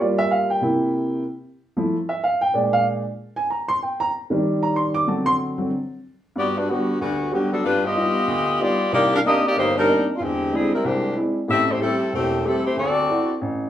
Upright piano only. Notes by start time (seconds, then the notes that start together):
0.00 G3 A#3 F4 D5
0.18 E5
0.31 F5
0.50 G5
0.61 C3 A#3 E4
1.77 F3 A3 E4
2.09 E5
2.24 F5
2.41 G5
2.54 A#2 G#3 D4 D5
2.73 F5
3.36 G#5
3.50 A#5
3.68 C6
3.83 G5
4.00 A#5
4.30 D#3 G3 D4
4.63 A#5
4.76 C6
4.94 D6
5.06 D3 F#3 C4 A5
5.26 C6
5.58 D3 F#3 C4
6.36 G2
6.68 G3 B3 F#4
7.01 D2
7.31 G3 B3 F#4
7.64 G2
7.95 G3 B3 D#4 F4
8.27 D2
8.60 G3 B3 D#4 F4
8.92 C2
9.24 A#3 C4 D4 D#4
9.56 G1
9.88 A#3 C4 D4 D#4
10.20 E2
10.52 G#3 C4 D4 E4
10.84 C2
11.16 G#3 C4 D4 E4
11.48 A1 A2
11.80 A3 C4 G4
12.12 E1
12.44 A3 C4 G4
12.76 D2
13.09 C4 D4 E4 F#4
13.41 A1